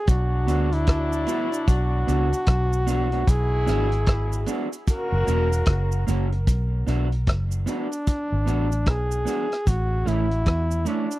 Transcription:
Already playing: G#4
0.07 B1 B2 F#3 D4 F#4, kick, closed hi-hat, cabasa
0.47 D2 B3 D4 F#4, closed hi-hat, cabasa
0.72 E4, closed hi-hat
0.87 kick, cross-stick, closed hi-hat
1.13 cabasa
1.27 B3 D4 F#4, closed hi-hat, cabasa
1.52 closed hi-hat, cabasa
1.67 B1 F#4, kick, closed hi-hat, cabasa
2.07 C#2 B3 D4 F#4, closed hi-hat, cabasa
2.33 closed hi-hat, cabasa
2.46 B1, kick, cross-stick, closed hi-hat
2.73 cabasa
2.86 B3 D4 F#4, closed hi-hat, cabasa
3.11 B3 D4 F#4, closed hi-hat
3.26 B1 B2 F#3 E4 G#4, kick, closed hi-hat, cabasa
3.66 G#1 B3 D4 F#4, cross-stick, closed hi-hat, cabasa
3.92 closed hi-hat
4.06 kick, cross-stick, closed hi-hat
4.33 cabasa
4.46 B3 D4 F#4, closed hi-hat, cabasa
4.72 closed hi-hat, cabasa
4.87 C#3 A#3 F#4 A#4, kick, closed hi-hat, cabasa
5.12 F#1
5.27 E1 A#3 C#4 F#4, closed hi-hat, cabasa
5.52 closed hi-hat, cabasa
5.66 F#1, kick, cross-stick, closed hi-hat
5.92 cabasa
6.07 F#1 A#3 C#4 F#4, closed hi-hat, cabasa
6.31 muted clean electric guitar stroke, closed hi-hat
6.47 B1, kick, closed hi-hat, cabasa
6.87 B1 B3 D4 F#4, closed hi-hat, cabasa
7.12 closed hi-hat
7.27 F#1, kick, cross-stick, closed hi-hat
7.52 cabasa
7.66 B3 D4 F#4, closed hi-hat, cabasa
7.92 closed hi-hat, cabasa
8.07 kick, closed hi-hat, cabasa
8.32 G#1
8.46 A1 B3 D4 F#4, closed hi-hat, cabasa
8.71 muted clean electric guitar stroke, closed hi-hat, cabasa
8.86 B1 G#4, kick, cross-stick, closed hi-hat
9.11 cabasa
9.25 B3 D4 F#4, closed hi-hat, cabasa
9.50 muted clean electric guitar stroke, cross-stick, closed hi-hat
9.67 A1 F#4, kick, closed hi-hat, cabasa
10.05 A1 A3 C#4 E4, closed hi-hat, cabasa
10.31 closed hi-hat
10.46 E2, kick, cross-stick, closed hi-hat
10.71 cabasa
10.85 A3 C#4 D4 E4, closed hi-hat, cabasa
11.11 closed hi-hat, cabasa

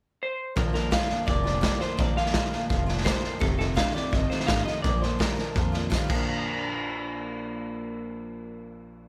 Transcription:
0.23 C5
0.56 A#1 A#2 F3 A#3 D4 F4 A#4, kick, snare
0.73 A#2 F3 A#3 D4 F4 A#4, snare
0.91 A#2 F3 G3 A#3 D4 F4 F5, kick, snare, hi-hat pedal
1.08 A#2 F3 A#3 D4 F4, muted upright bass stroke, snare
1.26 F1 A#2 F3 A#3 D4 F4 D5, kick, snare
1.44 A#2 F3 A#3 D4 F4, snare
1.61 A#2 F3 G3 A#3 D4 F4, kick, snare, hi-hat pedal
1.80 A#2 F3 A#3 D4 F4 C5, muted upright bass stroke, snare
1.97 A#1 A#2 F3 A#3 D4 F4 D5, kick, snare
2.16 A#2 F3 A#3 D4 F4 F5, snare
2.26 snare
2.34 A#2 F3 G3 A#3 D4 F4, kick, snare, hi-hat pedal
2.51 A#2 F3 A#3 D4 F4, muted upright bass stroke, snare
2.69 F1 A#2 F3 A#3 D4 F4, kick, snare
2.86 A#2 F3 A#3 D4 F4, snare
2.97 snare
3.04 A#2 F3 G3 A#3 D4 F4 C5, kick, snare, hi-hat pedal
3.22 A#2 F3 A#3 D4 F4, muted upright bass stroke, snare
3.39 F1 F2 C3 D#3 A3 D#4 F4 A4, kick, snare
3.57 F2 C3 D#3 A3 D#4 F4 A4, snare
3.74 F2 C3 D3 D#3 A3 D#4 F4 F5, kick, snare, hi-hat pedal
3.94 F2 C3 D#3 A3 D#4 F4 D5, muted upright bass stroke, snare
4.11 G1 F2 C3 D#3 A3 D#4 F4 D#5, kick, snare
4.30 F2 C3 D#3 A3 D#4 F4 C5, muted upright bass stroke, snare
4.40 snare
4.47 A1 F2 C3 D3 D#3 A3 D#4 F4 F5, kick, snare, hi-hat pedal
4.65 F2 C3 D#3 A3 D#4 F4 D#5, muted upright bass stroke, snare
4.82 A#1 A#2 F3 A#3 D4 F4 D5, kick, snare
5.01 A#2 F3 A#3 D4 F4 C5, snare
5.19 A#2 F3 G3 A#3 D4 F4 A#4, kick, snare, hi-hat pedal
5.35 A#2 F3 A#3 D4 F4, muted upright bass stroke, snare
5.54 F2 A#2 F3 A#3 D4 F4, kick, snare
5.72 A#2 F3 A#3 D4 F4, snare
5.90 A#2 F3 G3 A#3 D4 F4, kick, snare, hi-hat pedal
6.04 A#2
6.08 A#1 A#2 F3 A#3, kick, crash
6.13 D4
6.18 F4

